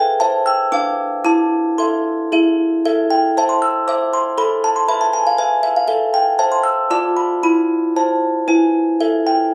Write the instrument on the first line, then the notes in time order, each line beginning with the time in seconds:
music box
Already playing: B4 G5
0.20 C5 E5 A5
0.46 G5 E6
0.72 D4 B4 F5 D6
1.24 E4 A5 D6
1.78 A4 E5 C6
2.32 E4 G#4 E5
2.85 A4 E5
3.10 G5
3.37 C5 E5 A5
3.49 C6
3.62 E6
3.88 C5 E5 D6
4.13 C6
4.38 A4 B5
4.64 A5
4.76 C6
4.88 B4 E5 B5
5.01 A5
5.13 G#5
5.27 F5
5.38 B4 E5 G#5
5.63 E5
5.76 F5
5.88 A4 E5
6.14 G5
6.39 C5 E5 A5
6.52 C6
6.63 E6
6.90 F4 D5 A5 D6
7.17 B5
7.43 E4 B5
7.96 C5 A5
8.48 E4 B4 G#5
9.00 A4 E5
9.27 G5